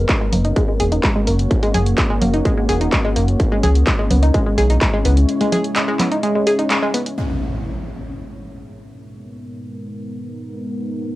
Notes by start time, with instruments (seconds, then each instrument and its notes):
Already playing: ambient pad A#3 C#4 F#4 C#5
0.09 synth arpeggio sound G#3, kick, clap, closed hi-hat
0.21 synth arpeggio sound G#3
0.33 analog synth bass F#1, synth arpeggio sound A#3, open hi-hat, low conga
0.45 synth arpeggio sound D#4, closed hi-hat
0.56 synth arpeggio sound G#3, kick, closed hi-hat
0.68 synth arpeggio sound G#3
0.80 analog synth bass E1, synth arpeggio sound G#4, open hi-hat
0.92 synth arpeggio sound D#4, closed hi-hat
1.03 synth arpeggio sound G#3, kick, clap, closed hi-hat
1.16 synth arpeggio sound G#3
1.27 analog synth bass F#1, synth arpeggio sound A#3, open hi-hat
1.39 closed hi-hat
1.51 kick, closed hi-hat
1.63 synth arpeggio sound G#3, open hi-hat
1.74 analog synth bass F#1, synth arpeggio sound G#4, open hi-hat, low conga
1.86 closed hi-hat
1.98 synth arpeggio sound G#3, kick, clap, closed hi-hat
2.10 synth arpeggio sound G#3
2.22 analog synth bass F#1, synth arpeggio sound A#3, open hi-hat, low conga
2.34 synth arpeggio sound D#4, closed hi-hat
2.45 synth arpeggio sound G#3, kick, closed hi-hat
2.57 synth arpeggio sound G#3
2.69 analog synth bass E1, synth arpeggio sound G#4, open hi-hat
2.81 synth arpeggio sound D#4, closed hi-hat
2.92 synth arpeggio sound G#3, kick, clap, closed hi-hat
3.05 synth arpeggio sound G#3
3.16 analog synth bass F#1, synth arpeggio sound A#3, open hi-hat
3.28 closed hi-hat
3.40 ambient pad G#3 E4 C#5, kick, closed hi-hat
3.52 synth arpeggio sound G#3
3.63 analog synth bass C#2, synth arpeggio sound G#4, open hi-hat, low conga
3.75 closed hi-hat
3.87 synth arpeggio sound G#3, kick, clap, closed hi-hat
3.99 synth arpeggio sound G#3
4.11 analog synth bass C#2, synth arpeggio sound B3, open hi-hat, low conga
4.23 synth arpeggio sound D#4, closed hi-hat
4.34 synth arpeggio sound G#3, kick, closed hi-hat
4.46 synth arpeggio sound G#3
4.58 analog synth bass B1, synth arpeggio sound G#4, open hi-hat
4.70 synth arpeggio sound D#4, closed hi-hat
4.81 synth arpeggio sound G#3, kick, clap, closed hi-hat
4.93 synth arpeggio sound G#3
5.05 analog synth bass C#2, synth arpeggio sound B3, open hi-hat
5.17 closed hi-hat
5.29 closed hi-hat
5.41 synth arpeggio sound G#3, open hi-hat
5.52 synth arpeggio sound G#4, open hi-hat, low conga
5.64 closed hi-hat
5.76 synth arpeggio sound G#3, clap, closed hi-hat
5.88 synth arpeggio sound G#3
6.00 synth arpeggio sound B3, clap, open hi-hat, low conga
6.12 synth arpeggio sound D#4, closed hi-hat
6.23 synth arpeggio sound G#3, closed hi-hat
6.35 synth arpeggio sound G#3
6.47 synth arpeggio sound G#4, open hi-hat
6.59 synth arpeggio sound D#4, closed hi-hat
6.70 synth arpeggio sound G#3, clap, closed hi-hat
6.82 synth arpeggio sound G#3
6.94 synth arpeggio sound B3, open hi-hat
7.06 closed hi-hat
7.18 ambient pad G#3 B3 D#4 A#4, impact